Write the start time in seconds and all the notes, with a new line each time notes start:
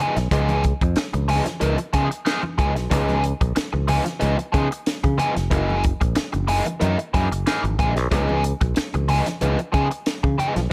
0.00 F3 B3 D#4 G#4
0.16 B1, muted overdriven electric guitar stroke, snare, closed hi-hat
0.31 C#2 F3 B3 D#4 G#4, kick, closed hi-hat, muted conga, low conga
0.49 closed hi-hat, muted conga, high conga
0.64 kick, closed hi-hat
0.81 F2, muted overdriven electric guitar stroke, kick, closed hi-hat
0.96 muted overdriven electric guitar stroke, muted fingered electric bass stroke, snare, closed hi-hat, muted conga
1.13 C#2, muted overdriven electric guitar stroke, closed hi-hat, high conga
1.28 F3 B3 D#4 G#4, open hi-hat, low conga
1.46 muted overdriven electric guitar stroke, snare, closed hi-hat, high conga
1.60 C#2 F3 B3 D#4 A#4, closed hi-hat, high conga
1.78 muted overdriven electric guitar stroke, closed hi-hat, muted conga
1.93 C#3 F3 B3 D#4 G#4, kick, closed hi-hat
2.10 muted overdriven electric guitar stroke, closed hi-hat
2.25 F3 B3 D#4 G#4, snare, closed hi-hat
2.43 muted overdriven electric guitar stroke, muted conga, high conga
2.58 C#2 F3 B3 D#4 G#4, kick, closed hi-hat, low conga
2.75 B1, muted overdriven electric guitar stroke, snare, closed hi-hat
2.90 C#2 F3 B3 D#4 G#4, kick, closed hi-hat, muted conga, low conga
3.09 closed hi-hat, muted conga, high conga
3.24 closed hi-hat
3.41 B1, muted overdriven electric guitar stroke, kick, closed hi-hat
3.56 muted overdriven electric guitar stroke, snare, closed hi-hat, muted conga
3.73 C#2, muted overdriven electric guitar stroke, muted conga, high conga
3.88 F3 B3 D#4 G#4, open hi-hat, low conga
4.04 muted overdriven electric guitar stroke, snare, closed hi-hat, high conga
4.20 C#2 F3 B3 D#4 G#4, closed hi-hat, high conga
4.38 muted overdriven electric guitar stroke, closed hi-hat
4.52 C#3 F3 B3 D#4 G#4, kick, closed hi-hat
4.71 muted overdriven electric guitar stroke, closed hi-hat
4.86 snare, closed hi-hat, muted conga
5.04 C#3, muted overdriven electric guitar stroke, kick, closed hi-hat, muted conga, high conga
5.18 F3 B3 D#4 G#4, closed hi-hat, low conga
5.35 F1, muted overdriven electric guitar stroke, snare, closed hi-hat
5.50 F#1 E3 A#3 D#4 G#4, kick, closed hi-hat, muted conga, low conga
5.70 high conga
5.84 kick, closed hi-hat
6.01 A#1, muted overdriven electric guitar stroke, kick, closed hi-hat
6.15 muted overdriven electric guitar stroke, snare, closed hi-hat, muted conga
6.33 F#1, muted overdriven electric guitar stroke, closed hi-hat, muted conga, high conga
6.48 E3 A#3 D#4 G#4, open hi-hat, low conga
6.66 muted overdriven electric guitar stroke, closed hi-hat, high conga
6.80 F#2 E3 A#3 D#4 A#4, closed hi-hat, muted conga, high conga
6.98 muted overdriven electric guitar stroke, closed hi-hat
7.14 F#2 E3 A#3 D#4 G#4, kick, closed hi-hat
7.32 F#1, muted overdriven electric guitar stroke, closed hi-hat
7.46 E3 A#3 D#4 G#4, snare, closed hi-hat
7.64 G#1, muted overdriven electric guitar stroke, closed hi-hat, muted conga, high conga
7.79 A#1 E3 A#3 D#4 G#4, kick, closed hi-hat, low conga
7.96 B1, muted overdriven electric guitar stroke, snare, closed hi-hat
8.11 C#2 F3 B3 D#4 G#4, kick, closed hi-hat, muted conga, low conga
8.29 muted conga, high conga
8.44 closed hi-hat
8.61 B1, muted overdriven electric guitar stroke, kick, closed hi-hat
8.76 muted overdriven electric guitar stroke, muted fingered electric bass stroke, snare, closed hi-hat
8.94 C#2, muted overdriven electric guitar stroke, closed hi-hat, muted conga, high conga
9.08 F3 B3 D#4 G#4, open hi-hat, low conga
9.26 muted overdriven electric guitar stroke, snare, closed hi-hat, high conga
9.41 C#2 F3 B3 D#4 G#4, closed hi-hat, muted conga, high conga
9.59 muted overdriven electric guitar stroke, closed hi-hat
9.72 C#3 F3 B3 D#4 G#4, kick, closed hi-hat
9.91 muted overdriven electric guitar stroke, closed hi-hat
10.06 snare, closed hi-hat, muted conga
10.23 C#3, muted overdriven electric guitar stroke, kick, high conga
10.38 F3 B3 D#4 G#4, closed hi-hat, low conga
10.55 B1, muted overdriven electric guitar stroke, snare, closed hi-hat